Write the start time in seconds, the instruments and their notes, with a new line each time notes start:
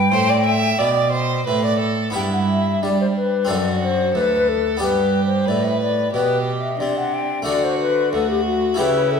Already playing: cello G2, harpsichord D5, flute G5
0.12 cello A2, harpsichord A2, violin C5
0.30 violin D5
0.46 violin E5
0.78 cello B2, harpsichord B2, violin D5
1.12 violin C5
1.47 cello A2, harpsichord A2, violin B4
1.65 violin D5
1.79 violin A4
2.10 harpsichord B3 D4 B4
2.15 harpsichord G2, cello G2, violin E4, flute G5
2.33 flute F#5
2.50 flute E5
2.82 cello G3, harpsichord G3, violin D4, flute D5
3.01 flute C5
3.17 flute B4
3.45 harpsichord C4 D4 A4, violin F#4
3.49 harpsichord F#2, cello F#2, flute D5
3.83 flute C5
4.15 harpsichord D2, cello D2, violin A4, flute B4
4.49 flute A4
4.77 harpsichord B3 D4 G4, violin G4
4.81 harpsichord G2, cello G2, flute B4
5.26 flute C5
5.46 cello A2, harpsichord A2, violin B4, flute D5
5.65 flute E5
5.81 flute D5
6.13 harpsichord B2, cello B2, violin G4, flute B4
6.59 flute E5
6.80 cello C3, harpsichord C3, violin D4, flute D5
6.97 flute F#5
7.14 flute G5
7.42 harpsichord A3 D4 F#4
7.47 harpsichord D3, cello D3, violin F#4, flute D5
7.64 flute C5
7.81 flute B4
8.13 harpsichord D2, cello D2, violin F#4, flute A4
8.30 flute G4
8.46 flute F#4
8.74 harpsichord A3 E4 G4, flute B4
8.79 harpsichord C#3, cello C#3, violin E4
9.11 flute A4